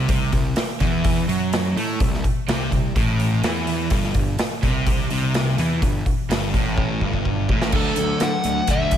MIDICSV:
0, 0, Header, 1, 9, 480
1, 0, Start_track
1, 0, Tempo, 477707
1, 90, Time_signature, 4, 2, 24, 8
1, 9018, End_track
2, 0, Start_track
2, 0, Title_t, "Lead electric guitar"
2, 0, Program_c, 0, 29
2, 7795, Note_on_c, 0, 69, 79
2, 8270, Note_on_c, 0, 78, 90
2, 8276, Note_off_c, 0, 69, 0
2, 8750, Note_on_c, 0, 76, 85
2, 8753, Note_off_c, 0, 78, 0
2, 9018, Note_off_c, 0, 76, 0
2, 9018, End_track
3, 0, Start_track
3, 0, Title_t, "Overdriven electric guitar"
3, 0, Program_c, 1, 29
3, 7786, Note_on_c, 1, 62, 79
3, 8003, Note_off_c, 1, 62, 0
3, 8022, Note_on_c, 1, 57, 65
3, 8231, Note_off_c, 1, 57, 0
3, 8261, Note_on_c, 1, 57, 75
3, 8470, Note_off_c, 1, 57, 0
3, 8494, Note_on_c, 1, 57, 72
3, 8707, Note_off_c, 1, 57, 0
3, 8742, Note_on_c, 1, 62, 100
3, 8961, Note_off_c, 1, 62, 0
3, 8971, Note_on_c, 1, 57, 66
3, 9018, Note_off_c, 1, 57, 0
3, 9018, End_track
4, 0, Start_track
4, 0, Title_t, "Distorted electric guitar"
4, 0, Program_c, 2, 30
4, 91, Note_on_c, 2, 48, 94
4, 324, Note_off_c, 2, 48, 0
4, 337, Note_on_c, 2, 48, 59
4, 526, Note_off_c, 2, 48, 0
4, 813, Note_on_c, 2, 52, 89
4, 1285, Note_off_c, 2, 52, 0
4, 1295, Note_on_c, 2, 54, 94
4, 1766, Note_off_c, 2, 54, 0
4, 1787, Note_on_c, 2, 57, 89
4, 2012, Note_off_c, 2, 57, 0
4, 2030, Note_on_c, 2, 48, 66
4, 2212, Note_off_c, 2, 48, 0
4, 2508, Note_on_c, 2, 48, 88
4, 2732, Note_off_c, 2, 48, 0
4, 2745, Note_on_c, 2, 48, 68
4, 2930, Note_off_c, 2, 48, 0
4, 2982, Note_on_c, 2, 45, 93
4, 3449, Note_off_c, 2, 45, 0
4, 3458, Note_on_c, 2, 52, 91
4, 3927, Note_off_c, 2, 52, 0
4, 3938, Note_on_c, 2, 43, 91
4, 4167, Note_off_c, 2, 43, 0
4, 4184, Note_on_c, 2, 43, 65
4, 4369, Note_off_c, 2, 43, 0
4, 4655, Note_on_c, 2, 48, 89
4, 5123, Note_off_c, 2, 48, 0
4, 5135, Note_on_c, 2, 48, 97
4, 5605, Note_off_c, 2, 48, 0
4, 5613, Note_on_c, 2, 52, 85
4, 5844, Note_off_c, 2, 52, 0
4, 5857, Note_on_c, 2, 43, 63
4, 6045, Note_off_c, 2, 43, 0
4, 6332, Note_on_c, 2, 43, 95
4, 6563, Note_off_c, 2, 43, 0
4, 6575, Note_on_c, 2, 45, 92
4, 7045, Note_off_c, 2, 45, 0
4, 7051, Note_on_c, 2, 43, 92
4, 7523, Note_off_c, 2, 43, 0
4, 7535, Note_on_c, 2, 45, 85
4, 7765, Note_off_c, 2, 45, 0
4, 7775, Note_on_c, 2, 50, 84
4, 7783, Note_on_c, 2, 54, 79
4, 7785, Note_on_c, 2, 57, 91
4, 7998, Note_off_c, 2, 50, 0
4, 8001, Note_off_c, 2, 54, 0
4, 8003, Note_off_c, 2, 57, 0
4, 8013, Note_on_c, 2, 50, 55
4, 8015, Note_on_c, 2, 54, 58
4, 8227, Note_off_c, 2, 50, 0
4, 8228, Note_off_c, 2, 54, 0
4, 8250, Note_on_c, 2, 50, 64
4, 8256, Note_on_c, 2, 54, 68
4, 8465, Note_off_c, 2, 50, 0
4, 8468, Note_off_c, 2, 54, 0
4, 8489, Note_on_c, 2, 50, 68
4, 8492, Note_on_c, 2, 54, 66
4, 8704, Note_off_c, 2, 50, 0
4, 8706, Note_off_c, 2, 54, 0
4, 8726, Note_on_c, 2, 50, 89
4, 8733, Note_on_c, 2, 54, 90
4, 8739, Note_on_c, 2, 57, 89
4, 8953, Note_off_c, 2, 50, 0
4, 8956, Note_off_c, 2, 54, 0
4, 8959, Note_off_c, 2, 57, 0
4, 8966, Note_on_c, 2, 50, 75
4, 8967, Note_on_c, 2, 54, 73
4, 9018, Note_off_c, 2, 50, 0
4, 9018, Note_off_c, 2, 54, 0
4, 9018, End_track
5, 0, Start_track
5, 0, Title_t, "Picked electric bass"
5, 0, Program_c, 3, 34
5, 84, Note_on_c, 3, 36, 79
5, 311, Note_off_c, 3, 36, 0
5, 326, Note_on_c, 3, 36, 71
5, 552, Note_off_c, 3, 36, 0
5, 805, Note_on_c, 3, 40, 83
5, 1254, Note_off_c, 3, 40, 0
5, 1288, Note_on_c, 3, 42, 80
5, 1736, Note_off_c, 3, 42, 0
5, 1774, Note_on_c, 3, 45, 82
5, 1996, Note_off_c, 3, 45, 0
5, 2010, Note_on_c, 3, 36, 71
5, 2234, Note_off_c, 3, 36, 0
5, 2492, Note_on_c, 3, 36, 85
5, 2715, Note_off_c, 3, 36, 0
5, 2730, Note_on_c, 3, 36, 73
5, 2954, Note_off_c, 3, 36, 0
5, 2969, Note_on_c, 3, 33, 77
5, 3416, Note_off_c, 3, 33, 0
5, 3449, Note_on_c, 3, 40, 83
5, 3896, Note_off_c, 3, 40, 0
5, 3929, Note_on_c, 3, 31, 85
5, 4153, Note_off_c, 3, 31, 0
5, 4165, Note_on_c, 3, 31, 76
5, 4391, Note_off_c, 3, 31, 0
5, 4650, Note_on_c, 3, 36, 81
5, 5096, Note_off_c, 3, 36, 0
5, 5133, Note_on_c, 3, 36, 84
5, 5578, Note_off_c, 3, 36, 0
5, 5609, Note_on_c, 3, 40, 81
5, 5832, Note_off_c, 3, 40, 0
5, 5848, Note_on_c, 3, 31, 75
5, 6072, Note_off_c, 3, 31, 0
5, 6323, Note_on_c, 3, 31, 92
5, 6549, Note_off_c, 3, 31, 0
5, 6566, Note_on_c, 3, 33, 85
5, 7014, Note_off_c, 3, 33, 0
5, 7046, Note_on_c, 3, 31, 84
5, 7493, Note_off_c, 3, 31, 0
5, 7523, Note_on_c, 3, 33, 81
5, 7749, Note_off_c, 3, 33, 0
5, 7766, Note_on_c, 3, 38, 82
5, 7925, Note_off_c, 3, 38, 0
5, 8007, Note_on_c, 3, 38, 81
5, 8165, Note_off_c, 3, 38, 0
5, 8250, Note_on_c, 3, 50, 79
5, 8407, Note_off_c, 3, 50, 0
5, 8487, Note_on_c, 3, 38, 77
5, 8645, Note_off_c, 3, 38, 0
5, 8718, Note_on_c, 3, 38, 76
5, 8879, Note_off_c, 3, 38, 0
5, 8963, Note_on_c, 3, 38, 81
5, 9018, Note_off_c, 3, 38, 0
5, 9018, End_track
6, 0, Start_track
6, 0, Title_t, "Muted distorted electric guitar strokes"
6, 567, Note_on_c, 9, 29, 49
6, 667, Note_off_c, 9, 29, 0
6, 4420, Note_on_c, 9, 29, 54
6, 4521, Note_off_c, 9, 29, 0
6, 9018, End_track
7, 0, Start_track
7, 0, Title_t, "Muted overdriven electric guitar strokes"
7, 575, Note_on_c, 9, 29, 47
7, 676, Note_off_c, 9, 29, 0
7, 4411, Note_on_c, 9, 29, 53
7, 4511, Note_off_c, 9, 29, 0
7, 9018, End_track
8, 0, Start_track
8, 0, Title_t, "Muted picked electric bass strokes"
8, 575, Note_on_c, 9, 29, 38
8, 675, Note_off_c, 9, 29, 0
8, 4410, Note_on_c, 9, 29, 37
8, 4510, Note_off_c, 9, 29, 0
8, 9018, End_track
9, 0, Start_track
9, 0, Title_t, "Drums"
9, 87, Note_on_c, 9, 46, 67
9, 89, Note_on_c, 9, 36, 99
9, 187, Note_off_c, 9, 46, 0
9, 190, Note_off_c, 9, 36, 0
9, 327, Note_on_c, 9, 46, 52
9, 328, Note_on_c, 9, 36, 78
9, 427, Note_off_c, 9, 46, 0
9, 429, Note_off_c, 9, 36, 0
9, 562, Note_on_c, 9, 46, 67
9, 570, Note_on_c, 9, 38, 90
9, 663, Note_off_c, 9, 46, 0
9, 671, Note_off_c, 9, 38, 0
9, 806, Note_on_c, 9, 46, 44
9, 810, Note_on_c, 9, 36, 72
9, 906, Note_off_c, 9, 46, 0
9, 910, Note_off_c, 9, 36, 0
9, 1049, Note_on_c, 9, 46, 65
9, 1052, Note_on_c, 9, 36, 95
9, 1149, Note_off_c, 9, 46, 0
9, 1153, Note_off_c, 9, 36, 0
9, 1297, Note_on_c, 9, 46, 47
9, 1397, Note_off_c, 9, 46, 0
9, 1535, Note_on_c, 9, 46, 57
9, 1543, Note_on_c, 9, 38, 94
9, 1636, Note_off_c, 9, 46, 0
9, 1644, Note_off_c, 9, 38, 0
9, 1782, Note_on_c, 9, 46, 45
9, 1883, Note_off_c, 9, 46, 0
9, 2013, Note_on_c, 9, 36, 104
9, 2013, Note_on_c, 9, 46, 59
9, 2113, Note_off_c, 9, 46, 0
9, 2114, Note_off_c, 9, 36, 0
9, 2148, Note_on_c, 9, 38, 30
9, 2248, Note_off_c, 9, 38, 0
9, 2254, Note_on_c, 9, 36, 77
9, 2255, Note_on_c, 9, 46, 43
9, 2354, Note_off_c, 9, 36, 0
9, 2355, Note_off_c, 9, 46, 0
9, 2497, Note_on_c, 9, 46, 59
9, 2505, Note_on_c, 9, 38, 99
9, 2597, Note_off_c, 9, 46, 0
9, 2605, Note_off_c, 9, 38, 0
9, 2733, Note_on_c, 9, 36, 70
9, 2734, Note_on_c, 9, 46, 43
9, 2833, Note_off_c, 9, 36, 0
9, 2835, Note_off_c, 9, 46, 0
9, 2972, Note_on_c, 9, 36, 93
9, 2974, Note_on_c, 9, 46, 53
9, 3073, Note_off_c, 9, 36, 0
9, 3074, Note_off_c, 9, 46, 0
9, 3211, Note_on_c, 9, 46, 44
9, 3311, Note_off_c, 9, 46, 0
9, 3451, Note_on_c, 9, 46, 55
9, 3459, Note_on_c, 9, 38, 92
9, 3551, Note_off_c, 9, 46, 0
9, 3560, Note_off_c, 9, 38, 0
9, 3689, Note_on_c, 9, 46, 45
9, 3789, Note_off_c, 9, 46, 0
9, 3922, Note_on_c, 9, 46, 66
9, 3929, Note_on_c, 9, 36, 97
9, 4022, Note_off_c, 9, 46, 0
9, 4029, Note_off_c, 9, 36, 0
9, 4056, Note_on_c, 9, 38, 29
9, 4156, Note_off_c, 9, 38, 0
9, 4163, Note_on_c, 9, 46, 51
9, 4168, Note_on_c, 9, 36, 84
9, 4263, Note_off_c, 9, 46, 0
9, 4268, Note_off_c, 9, 36, 0
9, 4407, Note_on_c, 9, 46, 62
9, 4415, Note_on_c, 9, 38, 97
9, 4507, Note_off_c, 9, 46, 0
9, 4515, Note_off_c, 9, 38, 0
9, 4651, Note_on_c, 9, 36, 73
9, 4653, Note_on_c, 9, 46, 45
9, 4751, Note_off_c, 9, 36, 0
9, 4753, Note_off_c, 9, 46, 0
9, 4889, Note_on_c, 9, 46, 62
9, 4890, Note_on_c, 9, 36, 99
9, 4989, Note_off_c, 9, 46, 0
9, 4990, Note_off_c, 9, 36, 0
9, 5128, Note_on_c, 9, 46, 47
9, 5229, Note_off_c, 9, 46, 0
9, 5369, Note_on_c, 9, 46, 57
9, 5377, Note_on_c, 9, 38, 93
9, 5470, Note_off_c, 9, 46, 0
9, 5478, Note_off_c, 9, 38, 0
9, 5609, Note_on_c, 9, 46, 46
9, 5710, Note_off_c, 9, 46, 0
9, 5849, Note_on_c, 9, 36, 100
9, 5850, Note_on_c, 9, 46, 62
9, 5950, Note_off_c, 9, 36, 0
9, 5951, Note_off_c, 9, 46, 0
9, 6090, Note_on_c, 9, 36, 83
9, 6090, Note_on_c, 9, 46, 48
9, 6190, Note_off_c, 9, 36, 0
9, 6191, Note_off_c, 9, 46, 0
9, 6337, Note_on_c, 9, 46, 57
9, 6345, Note_on_c, 9, 38, 95
9, 6438, Note_off_c, 9, 46, 0
9, 6446, Note_off_c, 9, 38, 0
9, 6571, Note_on_c, 9, 36, 79
9, 6572, Note_on_c, 9, 46, 42
9, 6671, Note_off_c, 9, 36, 0
9, 6672, Note_off_c, 9, 46, 0
9, 6808, Note_on_c, 9, 36, 95
9, 6909, Note_off_c, 9, 36, 0
9, 7047, Note_on_c, 9, 36, 58
9, 7147, Note_off_c, 9, 36, 0
9, 7168, Note_on_c, 9, 36, 56
9, 7269, Note_off_c, 9, 36, 0
9, 7289, Note_on_c, 9, 36, 67
9, 7389, Note_off_c, 9, 36, 0
9, 7527, Note_on_c, 9, 36, 82
9, 7627, Note_off_c, 9, 36, 0
9, 7653, Note_on_c, 9, 38, 80
9, 7754, Note_off_c, 9, 38, 0
9, 7760, Note_on_c, 9, 49, 96
9, 7765, Note_on_c, 9, 36, 104
9, 7860, Note_off_c, 9, 49, 0
9, 7865, Note_off_c, 9, 36, 0
9, 7997, Note_on_c, 9, 42, 65
9, 8097, Note_off_c, 9, 42, 0
9, 8240, Note_on_c, 9, 42, 81
9, 8248, Note_on_c, 9, 38, 103
9, 8341, Note_off_c, 9, 42, 0
9, 8349, Note_off_c, 9, 38, 0
9, 8477, Note_on_c, 9, 42, 61
9, 8577, Note_off_c, 9, 42, 0
9, 8716, Note_on_c, 9, 42, 84
9, 8721, Note_on_c, 9, 36, 80
9, 8817, Note_off_c, 9, 42, 0
9, 8822, Note_off_c, 9, 36, 0
9, 8956, Note_on_c, 9, 42, 65
9, 8961, Note_on_c, 9, 36, 78
9, 9018, Note_off_c, 9, 36, 0
9, 9018, Note_off_c, 9, 42, 0
9, 9018, End_track
0, 0, End_of_file